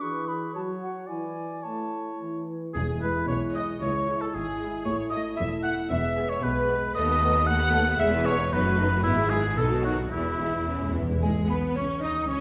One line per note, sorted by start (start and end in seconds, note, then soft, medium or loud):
0.00 0.47 E3 soft
0.00 0.28 G#4 soft
0.00 0.25 B4 soft
0.00 0.30 C#6 medium
0.26 0.54 G#4 soft
0.26 0.53 B4 soft
0.26 0.55 B5 medium
0.54 1.01 F#3 medium
0.54 1.10 F#4 soft
0.54 1.09 C#5 soft
0.54 0.61 A5 medium
0.82 1.08 F#5 medium
1.07 1.55 E3 soft
1.07 1.48 E4 soft
1.07 1.65 D5 soft
1.07 1.63 G#5 medium
1.63 2.11 A3 medium
1.63 2.47 E4 soft
1.63 2.47 C#5 soft
1.63 2.18 A5 medium
2.22 2.67 E3 soft
2.73 3.18 E1 medium
2.73 3.18 E2 medium
2.73 3.52 E2 medium
2.73 3.78 G#3 medium
2.73 3.78 E4 medium
2.73 2.86 G#4 medium
2.73 2.83 G#4 medium
2.73 3.01 G#4 medium
3.02 3.23 G#3 medium
3.02 3.23 E4 medium
3.02 3.27 B4 medium
3.02 3.10 B4 medium
3.02 3.12 B4 medium
3.28 3.70 B1 medium
3.28 3.70 B2 medium
3.28 3.40 C#5 medium
3.28 3.54 C#5 medium
3.28 3.39 C#5 medium
3.53 3.75 G#3 soft
3.53 3.75 E4 soft
3.53 3.81 D#5 medium
3.53 3.67 D#5 medium
3.53 3.65 D#5 medium
3.80 4.24 C#2 medium
3.80 4.33 G#3 medium
3.80 4.33 E4 medium
3.80 4.21 C#5 medium
3.80 4.23 C#5 medium
3.80 4.22 C#5 medium
4.09 4.28 G#3 medium
4.09 4.28 E4 medium
4.20 4.25 A4 medium
4.20 4.36 A4 medium
4.20 4.28 A4 medium
4.34 4.76 G#1 medium
4.34 4.76 G#2 medium
4.34 4.85 G#3 soft
4.34 4.85 E4 soft
4.34 4.85 G#4 medium
4.34 4.86 G#4 medium
4.62 4.81 G#3 medium
4.62 4.81 E4 medium
4.85 5.28 A1 medium
4.85 5.28 A2 medium
4.85 5.36 A3 medium
4.85 5.37 E4 medium
4.85 4.97 C#5 medium
4.85 5.12 C#5 medium
5.10 5.33 A3 medium
5.10 5.33 E4 medium
5.10 5.23 D#5 medium
5.10 5.20 D#5 medium
5.10 5.38 D#5 medium
5.37 5.80 E1 medium
5.37 5.80 E2 medium
5.37 5.49 E5 medium
5.37 5.64 E5 medium
5.63 5.85 A3 medium
5.63 5.85 E4 medium
5.63 5.75 F#5 medium
5.63 5.71 F#5 medium
5.63 5.91 F#5 medium
5.89 6.32 E1 medium
5.89 6.32 E2 medium
5.89 6.39 G#3 medium
5.89 6.41 B3 medium
5.89 6.31 E5 medium
5.89 6.29 E5 medium
6.17 6.37 B3 medium
6.17 6.37 G#4 medium
6.29 6.43 C#5 medium
6.29 6.45 C#5 medium
6.29 6.44 C#5 medium
6.41 6.85 B1 medium
6.41 6.84 B2 medium
6.41 6.93 G#3 medium
6.41 6.94 B3 medium
6.41 6.94 B4 medium
6.41 6.95 B4 medium
6.41 6.94 B4 medium
6.69 6.89 B3 medium
6.69 6.89 G#4 medium
6.94 7.95 D#2 medium
6.94 7.07 A3 medium
6.94 7.07 A4 medium
6.94 7.46 D#5 medium
6.94 7.48 D#5 loud
6.94 7.47 D#5 medium
7.08 7.21 B3 medium
7.08 7.21 B4 medium
7.20 7.34 A3 medium
7.20 7.30 A3 medium
7.20 7.30 B3 medium
7.20 7.34 A4 medium
7.33 7.47 B3 medium
7.33 7.47 B4 medium
7.46 7.59 A3 medium
7.46 7.59 A4 medium
7.46 7.97 F#5 medium
7.46 8.01 F#5 loud
7.46 7.99 F#5 loud
7.59 7.73 B3 medium
7.59 7.73 B4 medium
7.71 7.81 A3 medium
7.71 7.86 A3 medium
7.71 7.81 B3 medium
7.71 7.86 A4 medium
7.85 7.99 B3 medium
7.85 7.99 B4 medium
7.98 8.50 E1 medium
7.98 8.50 E2 medium
7.98 8.48 E2 medium
7.98 8.11 G#3 medium
7.98 8.11 G#4 medium
7.98 8.25 E5 medium
7.98 8.28 E5 loud
7.98 8.08 E5 medium
8.11 8.25 B3 medium
8.11 8.25 B4 medium
8.24 8.38 G#3 medium
8.24 8.35 G#3 medium
8.24 8.34 B3 medium
8.24 8.38 G#4 medium
8.24 8.51 C#5 medium
8.24 8.52 C#5 medium
8.24 8.54 C#5 loud
8.38 8.50 B3 medium
8.38 8.51 B4 medium
8.51 9.03 F#1 medium
8.51 9.03 F#2 medium
8.51 8.64 B3 medium
8.51 8.64 D#4 medium
8.51 9.03 B4 medium
8.51 9.05 B4 medium
8.51 9.03 B4 medium
8.64 8.78 A3 medium
8.64 8.78 F#4 medium
8.77 8.87 A3 medium
8.77 8.91 B3 medium
8.77 8.86 D#4 medium
8.77 8.91 D#4 medium
8.91 9.04 A3 medium
8.91 9.04 F#4 medium
9.03 9.58 G#1 medium
9.03 9.57 G#2 medium
9.03 9.16 B3 medium
9.03 9.30 E4 medium
9.03 9.31 E4 loud
9.03 9.16 E4 medium
9.03 9.31 E4 medium
9.18 9.31 G#3 medium
9.18 9.31 G#4 medium
9.29 9.39 G#3 medium
9.29 9.44 B3 medium
9.29 9.39 E4 medium
9.29 9.44 E4 medium
9.29 9.57 G#4 medium
9.29 9.59 G#4 medium
9.44 9.58 G#3 medium
9.44 9.58 G#4 soft
9.56 10.13 B1 medium
9.56 10.12 B2 medium
9.56 9.70 D#3 medium
9.56 9.70 D#4 medium
9.56 9.65 A4 medium
9.56 9.85 A4 medium
9.56 9.84 A4 medium
9.72 9.85 F#3 medium
9.72 9.85 F#4 medium
9.82 9.99 D#3 soft
9.82 9.93 F#3 medium
9.82 9.94 D#4 medium
9.82 9.99 D#4 medium
9.82 9.90 F#4 medium
9.82 9.97 F#4 medium
9.82 10.12 F#4 medium
9.99 10.13 F#3 soft
9.99 10.13 F#4 soft
10.10 11.00 E1 medium
10.10 10.19 E2 soft
10.10 11.00 E2 medium
10.10 10.25 E3 medium
10.10 10.25 B3 medium
10.10 10.93 E4 medium
10.10 10.94 E4 medium
10.20 10.26 E2 soft
10.26 10.40 G#3 soft
10.26 10.40 E4 soft
10.36 10.43 E2 soft
10.36 10.54 E3 soft
10.36 10.48 G#3 medium
10.36 10.54 B3 soft
10.36 10.49 E4 medium
10.44 10.50 E2 soft
10.51 10.58 E2 soft
10.51 10.68 G#3 soft
10.51 10.68 E4 soft
10.59 10.66 E2 soft
10.66 10.73 E2 medium
10.66 10.80 E3 soft
10.66 10.80 B3 soft
10.66 10.93 C#4 medium
10.75 10.81 E2 medium
10.81 10.90 E2 medium
10.81 10.95 G#3 soft
10.81 10.95 E4 soft
10.91 10.98 E2 medium
10.91 11.08 E3 soft
10.91 11.22 B3 soft
10.91 11.09 B3 soft
10.99 11.06 E2 medium
11.07 11.14 E2 medium
11.07 11.20 G#3 soft
11.07 11.23 E4 soft
11.15 11.22 E2 medium
11.21 11.47 G#1 medium
11.21 11.29 G#3 medium
11.21 11.47 G#3 medium
11.21 11.29 G#4 medium
11.21 11.47 G#4 medium
11.21 11.47 G#5 medium
11.48 11.76 B1 medium
11.48 11.75 B3 medium
11.48 11.76 B3 medium
11.48 11.76 B4 medium
11.48 11.56 B5 medium
11.75 11.84 C#2 medium
11.75 12.03 C#4 medium
11.75 11.83 C#5 medium
11.75 12.03 C#5 medium
11.75 12.03 C#6 medium
12.02 12.29 D#2 medium
12.02 12.29 D#4 medium
12.02 12.10 D#4 medium
12.02 12.29 D#5 medium
12.02 12.12 D#5 medium
12.02 12.30 D#6 medium
12.28 12.40 C#2 medium
12.28 12.40 C#4 medium
12.28 12.40 C#5 medium
12.28 12.40 C#6 medium